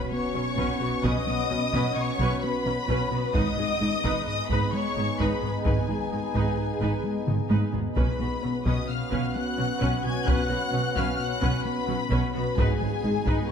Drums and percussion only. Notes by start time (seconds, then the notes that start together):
0.58 taiko
1.04 taiko
1.73 taiko
2.19 taiko
2.89 taiko
3.35 taiko
4.04 taiko
4.50 taiko
5.20 taiko
5.66 taiko
6.35 taiko
6.81 taiko
7.27 taiko mid
7.51 taiko high
7.74 taiko low
7.97 taiko
8.66 taiko
9.13 taiko
9.81 taiko
10.28 taiko
10.96 taiko
11.43 taiko
12.11 taiko
12.58 taiko
13.27 taiko